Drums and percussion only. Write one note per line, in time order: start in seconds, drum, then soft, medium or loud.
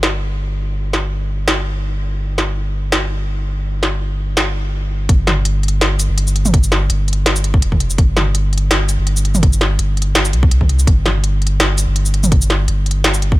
0.03 snare loud
0.93 snare medium
1.48 snare loud
2.38 snare medium
2.92 snare loud
3.83 snare medium
4.37 snare loud
5.09 kick loud
5.09 closed hi-hat medium
5.27 snare medium
5.27 mid tom soft
5.45 closed hi-hat medium
5.63 closed hi-hat medium
5.68 closed hi-hat medium
5.81 snare loud
5.81 closed hi-hat medium
6.00 closed hi-hat medium
6.00 shaker medium
6.18 closed hi-hat medium
6.27 shaker medium
6.36 closed hi-hat medium
6.46 mid tom medium
6.46 shaker medium
6.54 kick loud
6.54 closed hi-hat medium
6.64 shaker medium
6.72 snare medium
6.90 closed hi-hat medium
7.08 closed hi-hat soft
7.13 closed hi-hat medium
7.26 snare loud
7.26 closed hi-hat medium
7.36 shaker medium
7.44 closed hi-hat medium
7.54 kick loud
7.62 closed hi-hat medium
7.72 kick medium
7.72 mid tom soft
7.80 closed hi-hat medium
7.90 shaker medium
7.98 kick loud
7.98 closed hi-hat medium
8.17 snare medium
8.17 mid tom soft
8.35 closed hi-hat medium
8.53 closed hi-hat soft
8.58 closed hi-hat medium
8.71 snare loud
8.71 closed hi-hat medium
8.89 closed hi-hat medium
8.89 shaker medium
9.07 closed hi-hat medium
9.17 shaker medium
9.25 closed hi-hat medium
9.35 mid tom medium
9.35 shaker medium
9.43 kick loud
9.43 closed hi-hat medium
9.53 shaker medium
9.61 snare medium
9.79 closed hi-hat medium
9.97 closed hi-hat soft
10.02 closed hi-hat medium
10.15 snare loud
10.15 closed hi-hat medium
10.25 shaker medium
10.33 closed hi-hat medium
10.43 kick loud
10.51 closed hi-hat medium
10.61 kick medium
10.61 mid tom soft
10.69 closed hi-hat medium
10.79 shaker medium
10.87 kick loud
10.87 closed hi-hat medium
11.06 snare medium
11.06 mid tom soft
11.24 closed hi-hat medium
11.42 closed hi-hat soft
11.47 closed hi-hat medium
11.60 snare loud
11.60 closed hi-hat medium
11.78 closed hi-hat medium
11.78 shaker medium
11.96 closed hi-hat medium
12.06 shaker medium
12.14 closed hi-hat medium
12.24 mid tom medium
12.24 shaker medium
12.32 kick loud
12.32 closed hi-hat medium
12.42 shaker medium
12.50 snare medium
12.68 closed hi-hat medium
12.86 closed hi-hat soft
12.91 closed hi-hat medium
13.04 snare loud
13.04 closed hi-hat medium
13.14 shaker medium
13.22 closed hi-hat medium
13.32 kick loud